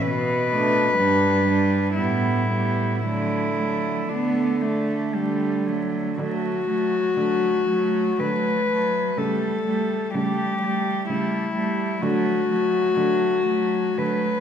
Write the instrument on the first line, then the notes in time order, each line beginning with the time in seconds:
cello
0.02 B2 B4
0.51 A3 D4
0.98 G2 G3 D4
1.46 G3 D4
1.96 A2 G3 B3 E4
2.50 G3 B3
3.02 D3 F#3 A3 E4
3.56 F#3 A3
4.09 D3 B3 D4
4.62 A3
5.14 D3 G3
5.67 F#3 A3
6.18 D3 F#3 A3 F#4
6.68 F#3 A3
7.17 D3 F#3 A3
7.68 F#3 A3
8.20 D3 F#3 A3 B4
8.69 F#3 A3
9.18 C#3 G3 A3 A4
9.67 G3 A3
10.14 C#3 G3 A3 G4
10.62 G3 A3
11.09 C#3 G3 A3 E4
11.56 G3 A3
12.01 D3 F#3 A3 F#4
12.48 F#3 A3
12.94 D3 F#3 A3
13.46 F#3 A3
13.97 D3 F#3 A3 B4